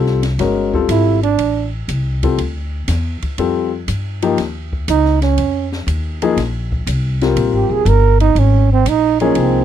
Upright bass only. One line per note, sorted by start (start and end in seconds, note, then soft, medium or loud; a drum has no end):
0.00 0.37 C2 medium
0.38 0.87 G1 medium
0.88 1.37 G#1 medium
1.38 1.87 A1 medium
1.88 2.37 C2 medium
2.38 2.86 D2 medium
2.88 3.20 E2 medium
3.22 muted upright bass stroke soft
3.38 3.86 F2 medium
3.88 4.36 G2 medium
4.38 4.86 D#2 medium
4.88 5.36 C#2 medium
5.38 5.86 F2 medium
5.87 6.35 D#2 medium
6.37 6.85 A#1 medium
6.87 7.35 C2 medium
7.36 7.53 A#1 medium
7.53 7.69 G#1 medium
7.69 7.85 D#1 medium
7.85 8.34 G1 loud
8.35 8.84 G#1 medium
8.86 9.34 A#1 medium
9.36 9.65 C2 medium